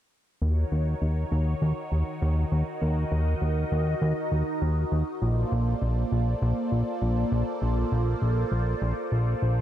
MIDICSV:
0, 0, Header, 1, 3, 480
1, 0, Start_track
1, 0, Tempo, 600000
1, 335, Time_signature, 4, 2, 24, 8
1, 7690, End_track
2, 0, Start_track
2, 0, Title_t, "Analog synth pad"
2, 0, Program_c, 0, 89
2, 335, Note_on_c, 0, 66, 70
2, 335, Note_on_c, 0, 73, 84
2, 336, Note_on_c, 0, 51, 76
2, 336, Note_on_c, 0, 63, 69
2, 336, Note_on_c, 0, 70, 68
2, 2236, Note_off_c, 0, 73, 0
2, 2253, Note_on_c, 0, 75, 83
2, 4143, Note_off_c, 0, 66, 0
2, 4144, Note_off_c, 0, 51, 0
2, 4144, Note_off_c, 0, 63, 0
2, 4144, Note_off_c, 0, 70, 0
2, 4155, Note_off_c, 0, 75, 0
2, 4175, Note_on_c, 0, 58, 78
2, 4175, Note_on_c, 0, 69, 70
2, 4175, Note_on_c, 0, 72, 72
2, 4176, Note_on_c, 0, 65, 70
2, 4176, Note_on_c, 0, 74, 86
2, 7690, Note_off_c, 0, 58, 0
2, 7690, Note_off_c, 0, 65, 0
2, 7690, Note_off_c, 0, 69, 0
2, 7690, Note_off_c, 0, 72, 0
2, 7690, Note_off_c, 0, 74, 0
2, 7690, End_track
3, 0, Start_track
3, 0, Title_t, "Analog synth bass"
3, 0, Program_c, 1, 38
3, 333, Note_on_c, 1, 39, 96
3, 517, Note_off_c, 1, 39, 0
3, 574, Note_on_c, 1, 39, 93
3, 758, Note_off_c, 1, 39, 0
3, 814, Note_on_c, 1, 39, 78
3, 998, Note_off_c, 1, 39, 0
3, 1054, Note_on_c, 1, 39, 95
3, 1238, Note_off_c, 1, 39, 0
3, 1294, Note_on_c, 1, 39, 101
3, 1386, Note_off_c, 1, 39, 0
3, 1534, Note_on_c, 1, 39, 86
3, 1627, Note_off_c, 1, 39, 0
3, 1775, Note_on_c, 1, 39, 99
3, 1959, Note_off_c, 1, 39, 0
3, 2014, Note_on_c, 1, 39, 94
3, 2107, Note_off_c, 1, 39, 0
3, 2254, Note_on_c, 1, 39, 97
3, 2438, Note_off_c, 1, 39, 0
3, 2493, Note_on_c, 1, 39, 95
3, 2678, Note_off_c, 1, 39, 0
3, 2733, Note_on_c, 1, 39, 80
3, 2918, Note_off_c, 1, 39, 0
3, 2974, Note_on_c, 1, 39, 92
3, 3158, Note_off_c, 1, 39, 0
3, 3213, Note_on_c, 1, 39, 97
3, 3306, Note_off_c, 1, 39, 0
3, 3453, Note_on_c, 1, 39, 86
3, 3546, Note_off_c, 1, 39, 0
3, 3694, Note_on_c, 1, 39, 99
3, 3878, Note_off_c, 1, 39, 0
3, 3935, Note_on_c, 1, 39, 91
3, 4027, Note_off_c, 1, 39, 0
3, 4175, Note_on_c, 1, 34, 97
3, 4359, Note_off_c, 1, 34, 0
3, 4416, Note_on_c, 1, 34, 93
3, 4599, Note_off_c, 1, 34, 0
3, 4654, Note_on_c, 1, 34, 82
3, 4838, Note_off_c, 1, 34, 0
3, 4895, Note_on_c, 1, 34, 91
3, 5078, Note_off_c, 1, 34, 0
3, 5135, Note_on_c, 1, 34, 102
3, 5227, Note_off_c, 1, 34, 0
3, 5374, Note_on_c, 1, 34, 82
3, 5466, Note_off_c, 1, 34, 0
3, 5615, Note_on_c, 1, 34, 98
3, 5798, Note_off_c, 1, 34, 0
3, 5855, Note_on_c, 1, 34, 99
3, 5947, Note_off_c, 1, 34, 0
3, 6095, Note_on_c, 1, 34, 100
3, 6278, Note_off_c, 1, 34, 0
3, 6335, Note_on_c, 1, 34, 98
3, 6519, Note_off_c, 1, 34, 0
3, 6574, Note_on_c, 1, 34, 78
3, 6758, Note_off_c, 1, 34, 0
3, 6813, Note_on_c, 1, 34, 91
3, 6998, Note_off_c, 1, 34, 0
3, 7055, Note_on_c, 1, 34, 98
3, 7147, Note_off_c, 1, 34, 0
3, 7295, Note_on_c, 1, 34, 79
3, 7479, Note_off_c, 1, 34, 0
3, 7537, Note_on_c, 1, 34, 75
3, 7690, Note_off_c, 1, 34, 0
3, 7690, End_track
0, 0, End_of_file